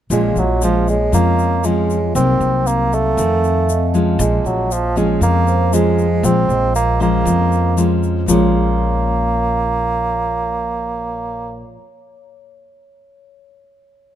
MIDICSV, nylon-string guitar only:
0, 0, Header, 1, 2, 480
1, 0, Start_track
1, 0, Key_signature, -5, "minor"
1, 0, Tempo, 511509
1, 96, Time_signature, 4, 2, 24, 8
1, 13280, End_track
2, 0, Start_track
2, 0, Title_t, "Nylon-string guitar"
2, 0, Program_c, 0, 24
2, 94, Note_on_c, 0, 46, 58
2, 100, Note_on_c, 0, 53, 47
2, 100, Note_on_c, 0, 56, 55
2, 104, Note_on_c, 0, 61, 59
2, 406, Note_off_c, 0, 53, 0
2, 408, Note_off_c, 0, 56, 0
2, 408, Note_off_c, 0, 61, 0
2, 576, Note_on_c, 0, 53, 52
2, 581, Note_on_c, 0, 56, 52
2, 585, Note_on_c, 0, 61, 57
2, 886, Note_off_c, 0, 53, 0
2, 888, Note_off_c, 0, 56, 0
2, 890, Note_off_c, 0, 61, 0
2, 1034, Note_off_c, 0, 46, 0
2, 1051, Note_on_c, 0, 41, 49
2, 1053, Note_on_c, 0, 53, 52
2, 1055, Note_on_c, 0, 56, 50
2, 1061, Note_on_c, 0, 61, 56
2, 1496, Note_off_c, 0, 53, 0
2, 1499, Note_off_c, 0, 56, 0
2, 1500, Note_off_c, 0, 61, 0
2, 1537, Note_on_c, 0, 53, 61
2, 1539, Note_on_c, 0, 56, 58
2, 1546, Note_on_c, 0, 61, 59
2, 1847, Note_off_c, 0, 53, 0
2, 1849, Note_off_c, 0, 56, 0
2, 1850, Note_off_c, 0, 61, 0
2, 1991, Note_off_c, 0, 41, 0
2, 2021, Note_on_c, 0, 48, 52
2, 2023, Note_on_c, 0, 54, 53
2, 2024, Note_on_c, 0, 58, 52
2, 2030, Note_on_c, 0, 63, 58
2, 2941, Note_off_c, 0, 54, 0
2, 2943, Note_off_c, 0, 58, 0
2, 2946, Note_off_c, 0, 63, 0
2, 2957, Note_off_c, 0, 48, 0
2, 2978, Note_on_c, 0, 41, 46
2, 2983, Note_on_c, 0, 51, 49
2, 2986, Note_on_c, 0, 57, 44
2, 2990, Note_on_c, 0, 60, 58
2, 3457, Note_off_c, 0, 51, 0
2, 3460, Note_off_c, 0, 57, 0
2, 3462, Note_off_c, 0, 60, 0
2, 3696, Note_on_c, 0, 53, 59
2, 3703, Note_on_c, 0, 56, 60
2, 3704, Note_on_c, 0, 61, 63
2, 3915, Note_off_c, 0, 41, 0
2, 3938, Note_on_c, 0, 46, 61
2, 4379, Note_off_c, 0, 53, 0
2, 4381, Note_off_c, 0, 56, 0
2, 4383, Note_off_c, 0, 61, 0
2, 4653, Note_on_c, 0, 53, 58
2, 4657, Note_on_c, 0, 56, 54
2, 4663, Note_on_c, 0, 61, 74
2, 4874, Note_off_c, 0, 46, 0
2, 4891, Note_on_c, 0, 41, 50
2, 5336, Note_off_c, 0, 53, 0
2, 5339, Note_off_c, 0, 56, 0
2, 5341, Note_off_c, 0, 61, 0
2, 5375, Note_on_c, 0, 53, 54
2, 5379, Note_on_c, 0, 56, 61
2, 5381, Note_on_c, 0, 61, 66
2, 5685, Note_off_c, 0, 53, 0
2, 5686, Note_off_c, 0, 56, 0
2, 5688, Note_off_c, 0, 61, 0
2, 5830, Note_off_c, 0, 41, 0
2, 5851, Note_on_c, 0, 46, 53
2, 5853, Note_on_c, 0, 53, 56
2, 5860, Note_on_c, 0, 56, 57
2, 6535, Note_off_c, 0, 53, 0
2, 6536, Note_off_c, 0, 56, 0
2, 6567, Note_on_c, 0, 53, 58
2, 6572, Note_on_c, 0, 56, 52
2, 6577, Note_on_c, 0, 61, 55
2, 6790, Note_off_c, 0, 46, 0
2, 6809, Note_on_c, 0, 41, 49
2, 7252, Note_off_c, 0, 53, 0
2, 7255, Note_off_c, 0, 56, 0
2, 7257, Note_off_c, 0, 61, 0
2, 7290, Note_on_c, 0, 53, 55
2, 7295, Note_on_c, 0, 56, 49
2, 7297, Note_on_c, 0, 61, 69
2, 7734, Note_off_c, 0, 53, 0
2, 7735, Note_off_c, 0, 56, 0
2, 7737, Note_off_c, 0, 61, 0
2, 7747, Note_off_c, 0, 41, 0
2, 7753, Note_on_c, 0, 46, 52
2, 7774, Note_on_c, 0, 53, 63
2, 7791, Note_on_c, 0, 56, 61
2, 7807, Note_on_c, 0, 61, 64
2, 11038, Note_off_c, 0, 46, 0
2, 11059, Note_off_c, 0, 53, 0
2, 11075, Note_off_c, 0, 56, 0
2, 11091, Note_off_c, 0, 61, 0
2, 13280, End_track
0, 0, End_of_file